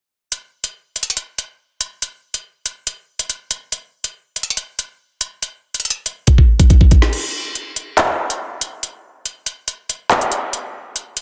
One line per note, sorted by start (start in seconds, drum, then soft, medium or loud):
0.32 closed hi-hat medium
0.64 closed hi-hat medium
0.96 closed hi-hat medium
1.03 closed hi-hat medium
1.10 closed hi-hat medium
1.17 closed hi-hat medium
1.38 closed hi-hat medium
1.81 closed hi-hat medium
2.02 closed hi-hat medium
2.34 closed hi-hat medium
2.66 closed hi-hat medium
2.87 closed hi-hat medium
3.19 closed hi-hat medium
3.30 closed hi-hat medium
3.51 closed hi-hat medium
3.72 closed hi-hat medium
4.04 closed hi-hat medium
4.36 closed hi-hat medium
4.43 closed hi-hat medium
4.50 closed hi-hat medium
4.57 closed hi-hat medium
4.79 closed hi-hat medium
5.21 closed hi-hat medium
5.43 closed hi-hat medium
5.74 closed hi-hat medium
5.80 closed hi-hat medium
5.85 closed hi-hat medium
5.90 closed hi-hat medium
6.06 closed hi-hat medium
6.27 kick medium
6.27 closed hi-hat medium
6.38 kick medium
6.60 kick medium
6.60 closed hi-hat medium
6.70 kick medium
6.70 closed hi-hat medium
6.81 kick medium
6.91 kick medium
6.91 closed hi-hat medium
7.02 snare medium
7.13 closed hi-hat medium
7.13 crash medium
7.55 closed hi-hat medium
7.76 closed hi-hat medium
7.98 clap loud
7.98 closed hi-hat medium
8.30 closed hi-hat medium
8.61 closed hi-hat loud
8.83 closed hi-hat medium
9.26 closed hi-hat medium
9.46 closed hi-hat medium
9.68 closed hi-hat medium
9.90 closed hi-hat medium
10.10 clap loud
10.10 closed hi-hat medium
10.21 closed hi-hat medium
10.32 closed hi-hat loud
10.53 closed hi-hat medium
10.96 closed hi-hat medium
11.17 closed hi-hat medium